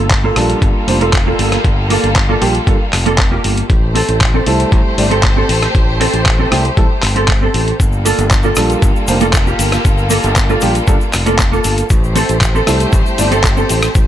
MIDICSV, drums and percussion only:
0, 0, Header, 1, 2, 480
1, 0, Start_track
1, 0, Key_signature, -2, "minor"
1, 0, Tempo, 512821
1, 1543, Time_signature, 4, 2, 24, 8
1, 13171, End_track
2, 0, Start_track
2, 0, Title_t, "Drums"
2, 98, Note_on_c, 9, 39, 111
2, 100, Note_on_c, 9, 36, 110
2, 102, Note_on_c, 9, 42, 50
2, 192, Note_off_c, 9, 39, 0
2, 193, Note_off_c, 9, 36, 0
2, 196, Note_off_c, 9, 42, 0
2, 339, Note_on_c, 9, 37, 73
2, 339, Note_on_c, 9, 46, 95
2, 433, Note_off_c, 9, 37, 0
2, 433, Note_off_c, 9, 46, 0
2, 464, Note_on_c, 9, 42, 64
2, 558, Note_off_c, 9, 42, 0
2, 579, Note_on_c, 9, 36, 110
2, 582, Note_on_c, 9, 42, 49
2, 673, Note_off_c, 9, 36, 0
2, 676, Note_off_c, 9, 42, 0
2, 823, Note_on_c, 9, 46, 95
2, 917, Note_off_c, 9, 46, 0
2, 947, Note_on_c, 9, 42, 65
2, 1041, Note_off_c, 9, 42, 0
2, 1060, Note_on_c, 9, 36, 115
2, 1061, Note_on_c, 9, 39, 115
2, 1064, Note_on_c, 9, 42, 50
2, 1153, Note_off_c, 9, 36, 0
2, 1154, Note_off_c, 9, 39, 0
2, 1158, Note_off_c, 9, 42, 0
2, 1302, Note_on_c, 9, 46, 101
2, 1396, Note_off_c, 9, 46, 0
2, 1424, Note_on_c, 9, 37, 76
2, 1424, Note_on_c, 9, 42, 68
2, 1517, Note_off_c, 9, 37, 0
2, 1517, Note_off_c, 9, 42, 0
2, 1540, Note_on_c, 9, 36, 110
2, 1542, Note_on_c, 9, 42, 50
2, 1633, Note_off_c, 9, 36, 0
2, 1635, Note_off_c, 9, 42, 0
2, 1782, Note_on_c, 9, 46, 103
2, 1876, Note_off_c, 9, 46, 0
2, 1907, Note_on_c, 9, 42, 63
2, 2001, Note_off_c, 9, 42, 0
2, 2020, Note_on_c, 9, 36, 112
2, 2021, Note_on_c, 9, 39, 115
2, 2024, Note_on_c, 9, 42, 48
2, 2113, Note_off_c, 9, 36, 0
2, 2114, Note_off_c, 9, 39, 0
2, 2118, Note_off_c, 9, 42, 0
2, 2262, Note_on_c, 9, 46, 101
2, 2356, Note_off_c, 9, 46, 0
2, 2384, Note_on_c, 9, 42, 61
2, 2478, Note_off_c, 9, 42, 0
2, 2500, Note_on_c, 9, 36, 114
2, 2504, Note_on_c, 9, 42, 49
2, 2594, Note_off_c, 9, 36, 0
2, 2597, Note_off_c, 9, 42, 0
2, 2739, Note_on_c, 9, 39, 59
2, 2743, Note_on_c, 9, 37, 60
2, 2743, Note_on_c, 9, 46, 101
2, 2833, Note_off_c, 9, 39, 0
2, 2837, Note_off_c, 9, 37, 0
2, 2837, Note_off_c, 9, 46, 0
2, 2865, Note_on_c, 9, 42, 65
2, 2959, Note_off_c, 9, 42, 0
2, 2979, Note_on_c, 9, 39, 119
2, 2980, Note_on_c, 9, 36, 118
2, 2982, Note_on_c, 9, 42, 50
2, 3072, Note_off_c, 9, 39, 0
2, 3074, Note_off_c, 9, 36, 0
2, 3076, Note_off_c, 9, 42, 0
2, 3223, Note_on_c, 9, 46, 107
2, 3316, Note_off_c, 9, 46, 0
2, 3346, Note_on_c, 9, 42, 65
2, 3440, Note_off_c, 9, 42, 0
2, 3460, Note_on_c, 9, 36, 116
2, 3462, Note_on_c, 9, 42, 48
2, 3554, Note_off_c, 9, 36, 0
2, 3556, Note_off_c, 9, 42, 0
2, 3702, Note_on_c, 9, 46, 103
2, 3795, Note_off_c, 9, 46, 0
2, 3824, Note_on_c, 9, 42, 62
2, 3918, Note_off_c, 9, 42, 0
2, 3940, Note_on_c, 9, 36, 118
2, 3941, Note_on_c, 9, 39, 116
2, 3945, Note_on_c, 9, 42, 47
2, 4034, Note_off_c, 9, 36, 0
2, 4035, Note_off_c, 9, 39, 0
2, 4038, Note_off_c, 9, 42, 0
2, 4179, Note_on_c, 9, 46, 102
2, 4272, Note_off_c, 9, 46, 0
2, 4305, Note_on_c, 9, 42, 59
2, 4398, Note_off_c, 9, 42, 0
2, 4419, Note_on_c, 9, 36, 118
2, 4423, Note_on_c, 9, 42, 49
2, 4513, Note_off_c, 9, 36, 0
2, 4517, Note_off_c, 9, 42, 0
2, 4662, Note_on_c, 9, 46, 104
2, 4756, Note_off_c, 9, 46, 0
2, 4787, Note_on_c, 9, 42, 63
2, 4880, Note_off_c, 9, 42, 0
2, 4897, Note_on_c, 9, 39, 110
2, 4900, Note_on_c, 9, 36, 118
2, 4901, Note_on_c, 9, 42, 48
2, 4991, Note_off_c, 9, 39, 0
2, 4993, Note_off_c, 9, 36, 0
2, 4994, Note_off_c, 9, 42, 0
2, 5141, Note_on_c, 9, 46, 108
2, 5235, Note_off_c, 9, 46, 0
2, 5265, Note_on_c, 9, 37, 73
2, 5265, Note_on_c, 9, 42, 62
2, 5359, Note_off_c, 9, 37, 0
2, 5359, Note_off_c, 9, 42, 0
2, 5380, Note_on_c, 9, 36, 112
2, 5385, Note_on_c, 9, 42, 47
2, 5473, Note_off_c, 9, 36, 0
2, 5478, Note_off_c, 9, 42, 0
2, 5623, Note_on_c, 9, 46, 106
2, 5717, Note_off_c, 9, 46, 0
2, 5742, Note_on_c, 9, 42, 59
2, 5836, Note_off_c, 9, 42, 0
2, 5858, Note_on_c, 9, 39, 109
2, 5859, Note_on_c, 9, 36, 117
2, 5862, Note_on_c, 9, 42, 46
2, 5952, Note_off_c, 9, 39, 0
2, 5953, Note_off_c, 9, 36, 0
2, 5955, Note_off_c, 9, 42, 0
2, 6101, Note_on_c, 9, 37, 73
2, 6101, Note_on_c, 9, 46, 99
2, 6195, Note_off_c, 9, 37, 0
2, 6195, Note_off_c, 9, 46, 0
2, 6225, Note_on_c, 9, 42, 59
2, 6318, Note_off_c, 9, 42, 0
2, 6339, Note_on_c, 9, 36, 116
2, 6341, Note_on_c, 9, 42, 46
2, 6433, Note_off_c, 9, 36, 0
2, 6435, Note_off_c, 9, 42, 0
2, 6575, Note_on_c, 9, 39, 57
2, 6579, Note_on_c, 9, 37, 61
2, 6579, Note_on_c, 9, 46, 102
2, 6669, Note_off_c, 9, 39, 0
2, 6673, Note_off_c, 9, 37, 0
2, 6673, Note_off_c, 9, 46, 0
2, 6702, Note_on_c, 9, 42, 62
2, 6796, Note_off_c, 9, 42, 0
2, 6814, Note_on_c, 9, 39, 111
2, 6818, Note_on_c, 9, 42, 47
2, 6819, Note_on_c, 9, 36, 116
2, 6908, Note_off_c, 9, 39, 0
2, 6912, Note_off_c, 9, 36, 0
2, 6912, Note_off_c, 9, 42, 0
2, 7060, Note_on_c, 9, 46, 106
2, 7154, Note_off_c, 9, 46, 0
2, 7186, Note_on_c, 9, 42, 61
2, 7279, Note_off_c, 9, 42, 0
2, 7299, Note_on_c, 9, 36, 109
2, 7300, Note_on_c, 9, 42, 47
2, 7306, Note_on_c, 9, 82, 49
2, 7393, Note_off_c, 9, 36, 0
2, 7394, Note_off_c, 9, 42, 0
2, 7400, Note_off_c, 9, 82, 0
2, 7418, Note_on_c, 9, 82, 24
2, 7511, Note_off_c, 9, 82, 0
2, 7540, Note_on_c, 9, 46, 104
2, 7544, Note_on_c, 9, 82, 89
2, 7634, Note_off_c, 9, 46, 0
2, 7638, Note_off_c, 9, 82, 0
2, 7660, Note_on_c, 9, 82, 36
2, 7663, Note_on_c, 9, 42, 62
2, 7753, Note_off_c, 9, 82, 0
2, 7756, Note_off_c, 9, 42, 0
2, 7775, Note_on_c, 9, 39, 104
2, 7779, Note_on_c, 9, 36, 112
2, 7779, Note_on_c, 9, 42, 47
2, 7779, Note_on_c, 9, 82, 45
2, 7869, Note_off_c, 9, 39, 0
2, 7872, Note_off_c, 9, 36, 0
2, 7873, Note_off_c, 9, 42, 0
2, 7873, Note_off_c, 9, 82, 0
2, 7890, Note_on_c, 9, 82, 27
2, 7984, Note_off_c, 9, 82, 0
2, 8009, Note_on_c, 9, 82, 94
2, 8019, Note_on_c, 9, 37, 78
2, 8019, Note_on_c, 9, 46, 98
2, 8102, Note_off_c, 9, 82, 0
2, 8112, Note_off_c, 9, 37, 0
2, 8112, Note_off_c, 9, 46, 0
2, 8141, Note_on_c, 9, 42, 59
2, 8154, Note_on_c, 9, 82, 36
2, 8235, Note_off_c, 9, 42, 0
2, 8248, Note_off_c, 9, 82, 0
2, 8258, Note_on_c, 9, 42, 47
2, 8259, Note_on_c, 9, 36, 115
2, 8261, Note_on_c, 9, 82, 49
2, 8351, Note_off_c, 9, 42, 0
2, 8352, Note_off_c, 9, 36, 0
2, 8355, Note_off_c, 9, 82, 0
2, 8387, Note_on_c, 9, 82, 25
2, 8481, Note_off_c, 9, 82, 0
2, 8494, Note_on_c, 9, 82, 90
2, 8499, Note_on_c, 9, 46, 99
2, 8588, Note_off_c, 9, 82, 0
2, 8593, Note_off_c, 9, 46, 0
2, 8614, Note_on_c, 9, 82, 37
2, 8620, Note_on_c, 9, 42, 64
2, 8708, Note_off_c, 9, 82, 0
2, 8713, Note_off_c, 9, 42, 0
2, 8734, Note_on_c, 9, 39, 109
2, 8735, Note_on_c, 9, 82, 47
2, 8738, Note_on_c, 9, 36, 113
2, 8738, Note_on_c, 9, 42, 47
2, 8828, Note_off_c, 9, 39, 0
2, 8829, Note_off_c, 9, 82, 0
2, 8832, Note_off_c, 9, 36, 0
2, 8832, Note_off_c, 9, 42, 0
2, 8863, Note_on_c, 9, 82, 22
2, 8957, Note_off_c, 9, 82, 0
2, 8976, Note_on_c, 9, 46, 101
2, 8984, Note_on_c, 9, 82, 93
2, 9069, Note_off_c, 9, 46, 0
2, 9077, Note_off_c, 9, 82, 0
2, 9100, Note_on_c, 9, 37, 78
2, 9100, Note_on_c, 9, 42, 62
2, 9104, Note_on_c, 9, 82, 36
2, 9194, Note_off_c, 9, 37, 0
2, 9194, Note_off_c, 9, 42, 0
2, 9198, Note_off_c, 9, 82, 0
2, 9218, Note_on_c, 9, 42, 50
2, 9219, Note_on_c, 9, 36, 109
2, 9219, Note_on_c, 9, 82, 49
2, 9312, Note_off_c, 9, 42, 0
2, 9313, Note_off_c, 9, 36, 0
2, 9313, Note_off_c, 9, 82, 0
2, 9342, Note_on_c, 9, 82, 23
2, 9436, Note_off_c, 9, 82, 0
2, 9453, Note_on_c, 9, 82, 85
2, 9459, Note_on_c, 9, 46, 98
2, 9547, Note_off_c, 9, 82, 0
2, 9553, Note_off_c, 9, 46, 0
2, 9576, Note_on_c, 9, 82, 34
2, 9584, Note_on_c, 9, 42, 63
2, 9670, Note_off_c, 9, 82, 0
2, 9678, Note_off_c, 9, 42, 0
2, 9696, Note_on_c, 9, 82, 50
2, 9697, Note_on_c, 9, 39, 107
2, 9700, Note_on_c, 9, 36, 109
2, 9701, Note_on_c, 9, 42, 49
2, 9790, Note_off_c, 9, 39, 0
2, 9790, Note_off_c, 9, 82, 0
2, 9794, Note_off_c, 9, 36, 0
2, 9794, Note_off_c, 9, 42, 0
2, 9822, Note_on_c, 9, 82, 23
2, 9916, Note_off_c, 9, 82, 0
2, 9932, Note_on_c, 9, 82, 76
2, 9940, Note_on_c, 9, 46, 93
2, 10025, Note_off_c, 9, 82, 0
2, 10033, Note_off_c, 9, 46, 0
2, 10064, Note_on_c, 9, 42, 62
2, 10068, Note_on_c, 9, 82, 32
2, 10157, Note_off_c, 9, 42, 0
2, 10161, Note_off_c, 9, 82, 0
2, 10177, Note_on_c, 9, 82, 46
2, 10180, Note_on_c, 9, 36, 112
2, 10180, Note_on_c, 9, 42, 49
2, 10270, Note_off_c, 9, 82, 0
2, 10273, Note_off_c, 9, 36, 0
2, 10274, Note_off_c, 9, 42, 0
2, 10304, Note_on_c, 9, 82, 25
2, 10397, Note_off_c, 9, 82, 0
2, 10419, Note_on_c, 9, 39, 55
2, 10419, Note_on_c, 9, 82, 90
2, 10422, Note_on_c, 9, 37, 65
2, 10422, Note_on_c, 9, 46, 99
2, 10512, Note_off_c, 9, 39, 0
2, 10512, Note_off_c, 9, 82, 0
2, 10516, Note_off_c, 9, 37, 0
2, 10516, Note_off_c, 9, 46, 0
2, 10541, Note_on_c, 9, 82, 36
2, 10543, Note_on_c, 9, 42, 65
2, 10635, Note_off_c, 9, 82, 0
2, 10637, Note_off_c, 9, 42, 0
2, 10657, Note_on_c, 9, 39, 108
2, 10660, Note_on_c, 9, 36, 112
2, 10661, Note_on_c, 9, 42, 49
2, 10666, Note_on_c, 9, 82, 45
2, 10751, Note_off_c, 9, 39, 0
2, 10754, Note_off_c, 9, 36, 0
2, 10755, Note_off_c, 9, 42, 0
2, 10759, Note_off_c, 9, 82, 0
2, 10794, Note_on_c, 9, 82, 21
2, 10887, Note_off_c, 9, 82, 0
2, 10898, Note_on_c, 9, 46, 100
2, 10898, Note_on_c, 9, 82, 79
2, 10991, Note_off_c, 9, 82, 0
2, 10992, Note_off_c, 9, 46, 0
2, 11024, Note_on_c, 9, 42, 65
2, 11026, Note_on_c, 9, 82, 34
2, 11118, Note_off_c, 9, 42, 0
2, 11120, Note_off_c, 9, 82, 0
2, 11135, Note_on_c, 9, 82, 47
2, 11141, Note_on_c, 9, 36, 109
2, 11141, Note_on_c, 9, 42, 51
2, 11229, Note_off_c, 9, 82, 0
2, 11235, Note_off_c, 9, 36, 0
2, 11235, Note_off_c, 9, 42, 0
2, 11267, Note_on_c, 9, 82, 21
2, 11361, Note_off_c, 9, 82, 0
2, 11378, Note_on_c, 9, 46, 98
2, 11383, Note_on_c, 9, 82, 77
2, 11471, Note_off_c, 9, 46, 0
2, 11476, Note_off_c, 9, 82, 0
2, 11505, Note_on_c, 9, 42, 67
2, 11510, Note_on_c, 9, 82, 38
2, 11598, Note_off_c, 9, 42, 0
2, 11603, Note_off_c, 9, 82, 0
2, 11616, Note_on_c, 9, 39, 106
2, 11620, Note_on_c, 9, 36, 107
2, 11620, Note_on_c, 9, 42, 52
2, 11629, Note_on_c, 9, 82, 46
2, 11710, Note_off_c, 9, 39, 0
2, 11714, Note_off_c, 9, 36, 0
2, 11714, Note_off_c, 9, 42, 0
2, 11722, Note_off_c, 9, 82, 0
2, 11751, Note_on_c, 9, 82, 25
2, 11845, Note_off_c, 9, 82, 0
2, 11860, Note_on_c, 9, 37, 81
2, 11860, Note_on_c, 9, 46, 95
2, 11865, Note_on_c, 9, 82, 78
2, 11954, Note_off_c, 9, 37, 0
2, 11954, Note_off_c, 9, 46, 0
2, 11958, Note_off_c, 9, 82, 0
2, 11982, Note_on_c, 9, 82, 34
2, 11984, Note_on_c, 9, 42, 64
2, 12075, Note_off_c, 9, 82, 0
2, 12078, Note_off_c, 9, 42, 0
2, 12099, Note_on_c, 9, 82, 43
2, 12100, Note_on_c, 9, 36, 109
2, 12101, Note_on_c, 9, 42, 51
2, 12192, Note_off_c, 9, 82, 0
2, 12194, Note_off_c, 9, 36, 0
2, 12195, Note_off_c, 9, 42, 0
2, 12224, Note_on_c, 9, 82, 24
2, 12318, Note_off_c, 9, 82, 0
2, 12338, Note_on_c, 9, 46, 99
2, 12343, Note_on_c, 9, 82, 79
2, 12432, Note_off_c, 9, 46, 0
2, 12437, Note_off_c, 9, 82, 0
2, 12465, Note_on_c, 9, 42, 67
2, 12468, Note_on_c, 9, 82, 33
2, 12559, Note_off_c, 9, 42, 0
2, 12562, Note_off_c, 9, 82, 0
2, 12577, Note_on_c, 9, 39, 110
2, 12580, Note_on_c, 9, 36, 110
2, 12580, Note_on_c, 9, 42, 52
2, 12592, Note_on_c, 9, 82, 49
2, 12670, Note_off_c, 9, 39, 0
2, 12673, Note_off_c, 9, 36, 0
2, 12674, Note_off_c, 9, 42, 0
2, 12686, Note_off_c, 9, 82, 0
2, 12702, Note_on_c, 9, 82, 24
2, 12795, Note_off_c, 9, 82, 0
2, 12818, Note_on_c, 9, 46, 100
2, 12824, Note_on_c, 9, 82, 84
2, 12912, Note_off_c, 9, 46, 0
2, 12918, Note_off_c, 9, 82, 0
2, 12937, Note_on_c, 9, 82, 35
2, 12940, Note_on_c, 9, 37, 86
2, 12940, Note_on_c, 9, 42, 68
2, 13031, Note_off_c, 9, 82, 0
2, 13034, Note_off_c, 9, 37, 0
2, 13034, Note_off_c, 9, 42, 0
2, 13057, Note_on_c, 9, 82, 48
2, 13059, Note_on_c, 9, 36, 110
2, 13059, Note_on_c, 9, 42, 53
2, 13150, Note_off_c, 9, 82, 0
2, 13152, Note_off_c, 9, 42, 0
2, 13153, Note_off_c, 9, 36, 0
2, 13171, End_track
0, 0, End_of_file